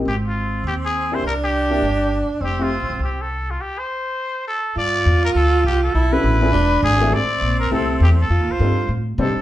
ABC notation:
X:1
M:4/4
L:1/8
Q:"Swing" 1/4=204
K:F
V:1 name="Muted trumpet"
G F3 G _A2 c | B G6 z | G F3 G A2 F | G c4- c A2 |
d3 B A2 G A- | A =B4- B ^G2 | d3 B A2 G A- | A c3 z2 A2 |]
V:2 name="Upright piano"
z6 z [B,DEG] | z3 [B,DEG] z4 | z [A,CEG] z6 | z8 |
z8 | z [=B,_D=D^FA]2 [B,DE=F_A] z3 [=A,CEG=A] | z4 [A,CEGA]3 z | z2 [G,CD_EA] z3 [G,CDEc] z |]
V:3 name="Alto saxophone"
C8 | D8 | C8 | z8 |
F8 | E4 D4 | C8 | F4- F z3 |]
V:4 name="Upright bass" clef=bass
_A,,,4 _E,,4 | C,,4 G,,,3 z | F,,,2- (3F,,, A,,, C,, C,,4 | z8 |
G,,2 E,,2 D,,2 C,,2 | =B,,,2 A,,,2 E,,,2 ^G,,,2 | A,,,2 B,,,2 C,,2 E,,2 | (3F,, _E,, C,, G,,2 A,,2 C, z |]